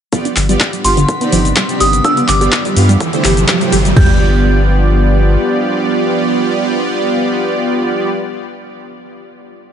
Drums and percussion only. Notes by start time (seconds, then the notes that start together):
0.13 kick, closed hi-hat, cabasa
0.25 closed hi-hat, cabasa
0.36 clap, open hi-hat, cabasa
0.49 closed hi-hat, cabasa
0.60 kick, clap, closed hi-hat, cabasa
0.73 closed hi-hat, cabasa
0.85 open hi-hat, cabasa
0.97 closed hi-hat, cabasa
1.09 kick, closed hi-hat, cabasa
1.21 closed hi-hat, cabasa
1.32 open hi-hat, cabasa
1.45 closed hi-hat, cabasa
1.56 kick, clap, closed hi-hat, cabasa
1.69 closed hi-hat, cabasa
1.80 open hi-hat, cabasa
1.93 closed hi-hat, cabasa
2.04 kick, closed hi-hat, cabasa
2.17 closed hi-hat, cabasa
2.28 clap, open hi-hat, cabasa
2.41 closed hi-hat, cabasa
2.52 kick, clap, closed hi-hat, cabasa
2.65 closed hi-hat, cabasa
2.77 open hi-hat, cabasa
2.89 closed hi-hat, cabasa
3.00 kick, closed hi-hat, cabasa
3.13 closed hi-hat, cabasa
3.24 clap, open hi-hat, cabasa
3.37 closed hi-hat, cabasa
3.48 kick, clap, closed hi-hat, cabasa
3.61 closed hi-hat, cabasa
3.72 open hi-hat, cabasa
3.85 closed hi-hat, cabasa
3.97 kick, floor tom, crash